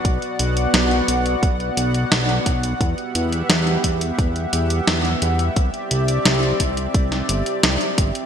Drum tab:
HH |xxxxxxxxxxxxxxxx|xxxxxxxxxxxxxxxx|xxxxxxxxxxxxxxxx|
SD |----o-------o---|----o-------o---|----o----o--o---|
BD |o-------o-----o-|o-----o-o-------|o-----o-o-----o-|